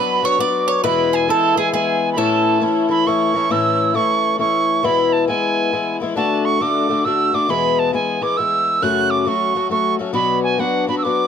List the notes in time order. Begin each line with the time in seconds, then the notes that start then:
Already playing: F#3 B3 D4 F#4 B4 B5
0.22 F#3 B3 D4 F#4 C#5 C#6
0.38 F#3 B3 D4 F#4 D5 D6
0.68 C#5
0.83 E2 B2 E3 G#3 B3 E4 B4 B5
1.13 G#4 G#5
1.27 E3 G#3 B3 E4 A4 A5
1.56 E3 G#3 B3 E4 G#4 G#5
1.72 E3 G#3 B3 E4 G#4 G#5
2.12 A2 B5
2.17 E3 A3 C#4 E4 A4 A5
2.60 E3 A3 C#4 E4
2.88 E3 A3 C#4 E4 B5
3.06 E3 A3 C#4 E4 C#6
3.34 E3 A3 C#4 E4
3.50 A2 E3 A3 C#4 E4 E6
3.94 E3 A3 C#4 E4 C#6
4.38 E3 A3 C#4 E4 C#6
4.83 E2 B2 E3 G#3 B3 E4 B5
5.13 A5
5.28 E3 G#3 B3 E4 G#5
5.71 E3 G#3 B3 E4
6.00 E3 G#3 B3 E4
6.15 D3 A3 D4 F#4 A5
6.45 C#6
6.60 D3 A3 D4 F#4 D6
6.89 D3 A3 D4 F#4
7.05 D3 A3 D4 F#4 E6
7.33 D3 A3 D4 F#4 D6
7.48 E2 B2 E3 G#3 B3 G#4 B5
7.79 A5
7.92 E3 G#3 B3 G#4 G#5
8.21 E3 G#3 B3 G#4 D6
8.37 E3 G#3 B3 G#4 E6
8.82 F#2 C#3 F#3 A3 C#4 F#4 F#6
9.10 D6
9.21 F#3 D6
9.26 A3 C#4 F#4 C#6
9.55 F#3 A3 C#4 F#4
9.69 F#3 A3 C#4 F#4 C#6
9.99 F#3 A3 C#4 F#4
10.13 B2 F#3 B3 D4 F#4 B5
10.43 G#5
10.58 F#3 B3 D4 F#4 F#5
10.87 F#3 B3 D4 F#4 B5
10.98 E6
11.03 F#3 B3 D4 F#4 D6